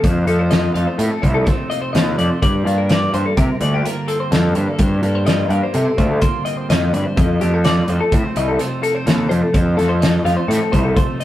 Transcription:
0.04 F2 C5, kick, closed hi-hat
0.27 F2 A3 A4, closed hi-hat
0.39 C5
0.51 D#4 D#5, snare, closed hi-hat
0.74 F2 F3 A3 F5, closed hi-hat
0.87 C5
0.98 A2 A#3 A4, closed hi-hat
1.11 C4
1.22 C2 C3 D#4 C5, kick, closed hi-hat
1.34 A4
1.45 A3 C5, kick, snare, closed hi-hat
1.70 A#3 D#5, closed hi-hat
1.82 C4 C5
1.93 D#2 F2 D#5, snare, closed hi-hat
2.18 F2 A3 D5, closed hi-hat
2.30 C5
2.42 G2 D5, kick, closed hi-hat
2.65 G2 A#3 F4, closed hi-hat
2.78 A#4
2.89 F4 D5, snare, closed hi-hat
3.12 G2 G3 A#3 C5, closed hi-hat
3.26 A4
3.37 C3 C4 A#4, kick, closed hi-hat
3.60 D2 D3 D#4 D5, closed hi-hat
3.73 F4 G4
3.85 A#3 A#4, closed hi-hat
4.08 C4 A4, closed hi-hat
4.20 C5
4.32 F2 G2 A4, snare, closed hi-hat
4.55 G2 A#3 C5, closed hi-hat
4.68 A4
4.78 G2 C5, kick, closed hi-hat
5.03 G2 A#3 A4, closed hi-hat
5.15 C5
5.26 F4 D#5, snare, closed hi-hat
5.49 G2 G3 A#3 F5, closed hi-hat
5.63 C5
5.73 C3 A#3 A4, closed hi-hat
5.85 C4
5.98 D2 D3 F4 C5, kick, closed hi-hat
6.09 A4
6.22 A#3 C5, kick, closed hi-hat
6.45 C4 D#5, closed hi-hat
6.57 C5
6.70 F2 A2 D#5, snare, closed hi-hat
6.92 G2 D5, closed hi-hat
7.05 C5
7.17 F2 D#5, kick, closed hi-hat
7.41 F2 A3 G4, closed hi-hat
7.54 A4
7.64 D#4 D5, snare, closed hi-hat
7.88 F2 F3 A3 C5, closed hi-hat
8.01 A4
8.12 A2 C4 C5, kick, closed hi-hat
8.36 C2 C3 D#4 D#5, closed hi-hat
8.48 A4
8.59 A3 C5, closed hi-hat
8.83 A#3 A4, closed hi-hat
8.95 C4 C5
9.06 D#2 F2 A4, snare, closed hi-hat
9.29 F2 A3 C5, closed hi-hat
9.42 A4
9.53 F2 C5, kick, closed hi-hat
9.77 F2 A3 A4, snare, closed hi-hat
9.89 C5
10.00 D#4 D#5, snare, closed hi-hat
10.25 F2 F3 A3 F5, snare, closed hi-hat
10.36 C5
10.48 A2 C4 A4, snare, closed hi-hat
10.72 C2 C3 D#4 C5, kick, closed hi-hat
10.84 A4
10.95 A3 C5, kick, closed hi-hat
11.20 C4 D#5, closed hi-hat

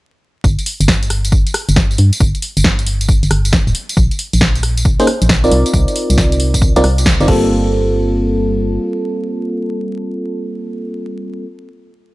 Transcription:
0.44 G1, kick, tambourine
0.59 closed hi-hat, tambourine
0.66 open hi-hat
0.80 G1, closed hi-hat, tambourine
0.88 kick, snare, tambourine
1.03 closed hi-hat, tambourine
1.10 cross-stick, open hi-hat
1.25 closed hi-hat, tambourine
1.32 kick, tambourine
1.47 closed hi-hat, tambourine
1.54 cross-stick, open hi-hat
1.69 G1, closed hi-hat, tambourine
1.76 kick, snare, tambourine
1.91 tambourine
1.98 G2, open hi-hat
2.13 closed hi-hat, tambourine
2.20 G1, kick, tambourine
2.35 closed hi-hat, tambourine
2.42 open hi-hat
2.57 G1, closed hi-hat, tambourine
2.64 kick, snare
2.79 closed hi-hat, tambourine
2.87 open hi-hat
3.01 closed hi-hat, tambourine
3.09 kick, tambourine
3.23 G1, closed hi-hat, tambourine
3.31 G1, cross-stick, open hi-hat
3.45 closed hi-hat, tambourine
3.53 kick, snare, tambourine
3.67 D1, tambourine
3.75 open hi-hat
3.89 closed hi-hat, tambourine
3.97 A#1, kick, tambourine
4.11 closed hi-hat, tambourine
4.19 open hi-hat
4.33 A#1, closed hi-hat, tambourine
4.41 kick, snare
4.55 closed hi-hat, tambourine
4.63 cross-stick, open hi-hat
4.78 closed hi-hat, tambourine
4.85 kick, tambourine
5.00 A#3 C#4 D#4 G#4 C5, closed hi-hat, tambourine
5.07 cross-stick, open hi-hat
5.22 A#1, closed hi-hat, tambourine
5.29 kick, snare, tambourine
5.44 C4 D#4 F4 A#4 D5, tambourine
5.51 C2, open hi-hat
5.66 closed hi-hat, tambourine
5.73 C2, kick, tambourine
5.88 closed hi-hat, tambourine
5.96 open hi-hat
6.10 C2, closed hi-hat, tambourine
6.18 kick, snare, tambourine
6.32 closed hi-hat, tambourine
6.40 open hi-hat
6.54 kick, closed hi-hat, tambourine
6.62 kick, tambourine
6.76 C2 C4 D#4 F4 A#4 D5, closed hi-hat, tambourine
6.84 C2, cross-stick, open hi-hat
6.98 closed hi-hat, tambourine
7.06 kick, snare, tambourine
7.20 G1 C4 D#4 F4 A#4 D5, tambourine
7.28 G1 G3 A#3 C4 F4 A4, kick, crash

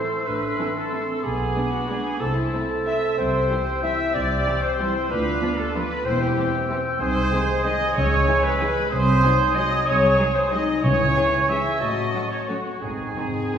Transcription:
Already playing: A3 E4 C5 C6 E6
0.26 A1 A2 D4 B4
0.58 E3 C4 E4 A4
0.76 A4
0.92 E3 C4 E4 A4
1.23 B1 B2 B3 G#4 B5 D6
1.55 G#3 B3 D4
1.72 F#4
1.88 G#3 B3 D4 G#4
2.20 C2 C3 C4 E4 A4 A5 E6
2.35 E4
2.52 A3 C4 E4 A4
2.86 A3 C4 E4 E5
3.17 C2 C3 C4 G4 C5 G5 E6
3.50 E3 G3 E4 G4
3.82 E3 G3 E4 G4 E5
4.14 C2 C3 G4 D5
4.46 E3 G3 E4 G4
4.62 C5
4.79 E3 G3 E4 G4
5.09 D2 D4 F4 B4 F5 D6
5.41 F3 B3 D4 F4 G4
5.57 A4
5.74 F3 B3 D4 F4 B4
6.05 E1 E2 C4 E4 C5 G5 E6
6.21 G4
6.37 E3 C4 G4
6.69 E3 C4 G4
7.00 C2 C3 G#3 D#4 C5 G#5 D#6
7.32 D#3 G#3 C4 G#4
7.63 D#3 G#3 C4 G#4 D#5
7.95 C#2 C#3 C#5 E6
8.27 E3 G#3 E4 G#4
8.43 B4
8.60 E3 G#3 E4 G#4
8.91 C2 C3 F#3 C4 C5 G#5 D#6
9.23 F#3 G#3 D#4 G#4
9.55 F#3 G#3 D#4 F#4 G#4 D#5
9.86 C2 C3 G#4 C#5
10.19 F#3 G#3 D#4 G#4
10.34 C5
10.51 F#3 G#3 D#4 G#4 D#5
10.82 C#2 C#3 E3 E4 C#5 G#5 C#6
11.16 E3 G#3 C#4 G#4
11.49 E3 G#3 C#4 G#4 E5
11.80 A1 A2 F#3 F#4 D#5 A5
12.13 F#3 A3 C#4 F#4
12.31 C#5
12.48 F#3 A3 C#4 F#4 A4
12.82 G#1 G#2 D#3 C4 G#4 G#5
12.89 G#2
12.97 G#2
13.04 G#2
13.12 G#2
13.16 D#3 C4 D#4 G#4
13.20 G#2
13.28 G#2
13.35 G#2
13.43 G#2
13.50 G#2 D#3 C4 D#4 G#4 C6

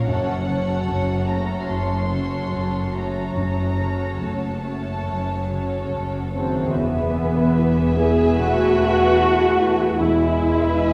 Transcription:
Already playing: A#2 F3 A#3 F4
0.06 F#1 F#2 C#4 F#4 A4 C#5 F#5
0.48 C#3 C#4 F#4 A4 C#5
0.88 F#1 F#2 C#3 F#4
1.28 A3 C#4 F#4 A4 C#5 A#5
1.68 F#1 F#2 C6
2.10 C#3 C#4 F#4 A4 C#5
2.52 F#1 F#2 F#4
2.94 A3 C#4 F#4 A4 C#5 A#5
3.36 F#1 F#2 A#5
3.78 C#3 C#4 F#4 A4 C#5
4.21 F#1 F#2 A3 F#4 A5
4.64 A3 C#4 F#4 A4 C#5
5.06 F#1 F#2
5.49 C#3 C#4 F#4 A4 C#5
5.91 F#1 F#2 F#4
6.33 C#3 D#3 A3 C4 F#4 A4 C5 C#5
6.58 E2
6.62 B3
6.67 G#4
6.71 E2 B3 B4 E5
6.75 E1 E3 B3 B4 E5 G#5
6.96 G#4
7.15 E5
7.36 B4
7.57 E4
7.77 G#4
7.96 B3 E4 G#4 G#5
8.18 G#4
8.37 B2 A3 F#4 F#5
8.59 G#4
8.79 E5
9.00 B4
9.20 E4
9.40 G#4
9.59 E4
9.80 G#4
9.99 E1 E2 G#3 E4 B4 E5 G#5
10.20 E4
10.40 E5
10.61 B4
10.81 E4

